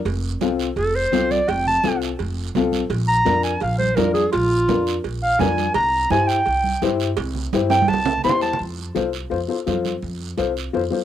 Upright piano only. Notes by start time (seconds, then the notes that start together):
0.42 C4 F4 A4
1.12 C4 F4 A4
1.84 C4 F4 A4
2.56 C4 F4 A4
3.25 D4 F4 A#4
3.98 D4 F4 A#4
4.69 D4 F4 A#4
5.40 D4 F4 A#4
6.10 E4 G4 C5
6.82 E4 G4 C5
7.53 E4 G4 C5
8.24 E4 G4 C5
8.95 F4 A4 C5
9.30 F4 A4 C5
9.48 F4 A4 C5
9.66 F4 A4 C5
10.37 F4 A4 C5
10.73 F4 A4 C5
10.91 F4 A4 C5